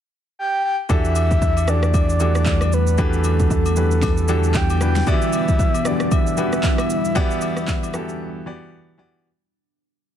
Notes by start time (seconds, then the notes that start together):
0.39 G5
0.64 G5
0.89 E2 D3 E3 G3 A3 D4 F#4 G4 A4 E5 F#5, kick, high agogo, shaker
1.05 shaker
1.16 high agogo, shaker
1.31 kick, shaker
1.42 kick, low woodblock, shaker
1.57 high agogo, shaker
1.67 E3 D4 F#4 G4 A4 D5, cross-stick, shaker
1.83 cross-stick, shaker
1.94 D5, kick, high agogo, shaker
2.09 shaker
2.20 E3 D4 F#4 G4 A4, high agogo, shaker
2.35 cross-stick, shaker
2.46 kick, clap, low woodblock, shaker
2.61 cross-stick, high agogo, shaker
2.72 B4, shaker
2.87 shaker
2.98 E3 B3 D4 F#4 G4 A4 B4, kick, high agogo, shaker
3.13 shaker
3.24 high agogo, shaker
3.40 kick, shaker
3.50 A4, kick, low woodblock, shaker
3.66 high agogo, shaker
3.76 E3 D4 F#4 G4 B4, shaker
3.91 shaker
4.02 kick, snare, high agogo, shaker
4.17 shaker
4.28 E3 D4 F#4 G4 A4, high agogo, shaker
4.44 shaker
4.54 G5, kick, clap, low woodblock, shaker
4.70 high agogo, shaker
4.81 E3 D4 F#4 G4 B4 G5, cross-stick, shaker
4.96 snare, shaker
5.07 E2 D3 G3 B3 E4 F#4 G4 D5 E5, kick, high agogo, shaker
5.13 E3
5.22 shaker
5.33 high agogo, shaker
5.48 kick, shaker
5.59 kick, low woodblock, shaker
5.74 high agogo, shaker
5.85 D3 B3 F#4 G4 D5, cross-stick, shaker
5.91 E3
6.00 cross-stick, shaker
6.11 E5, kick, high agogo, shaker
6.27 shaker
6.37 E3 B3 F#4 G4 B4, high agogo, shaker
6.53 cross-stick, shaker
6.63 kick, clap, low woodblock, shaker
6.78 cross-stick, high agogo, shaker
6.90 shaker
7.05 shaker
7.15 E3 B3 D4 F#4 G4 D5, kick, high agogo, shaker
7.31 shaker
7.41 high agogo, shaker
7.57 cross-stick, shaker
7.68 kick, clap, low woodblock, shaker
7.83 high agogo, shaker
7.94 E3 B3 F#4 G4 A4, cross-stick, shaker
8.09 shaker
8.46 E3 B3 F#4 G4 D5
8.98 E3 B3 F#4 G4 D5